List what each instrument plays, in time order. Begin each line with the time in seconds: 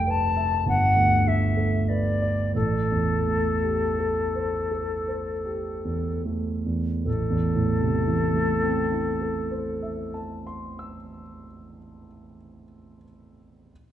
Already playing: grand piano F1 C2 A3 A4, flute G5
0.07 grand piano B4, flute A5
0.37 grand piano E5
0.66 grand piano G1, flute F#5
0.96 grand piano D2
1.27 grand piano A3, flute E5
1.57 grand piano A4
1.88 grand piano B4, flute D5
2.22 grand piano D5
2.55 grand piano A1, flute A4
2.92 grand piano E2
3.27 grand piano A3
3.63 grand piano G4
3.99 grand piano A4
4.35 grand piano C5
4.71 grand piano A4
5.08 grand piano C5
5.46 grand piano G4
5.85 grand piano E2
6.26 grand piano A3
6.66 grand piano E2
7.04 grand piano A1, flute A4
7.30 grand piano E2
7.55 grand piano A2
7.81 grand piano C3
8.07 grand piano E3
8.34 grand piano A3
8.63 grand piano C4
8.92 grand piano E4
9.22 grand piano A4
9.51 grand piano C5
9.82 grand piano E5
10.14 grand piano A5
10.47 grand piano C6
10.79 grand piano E6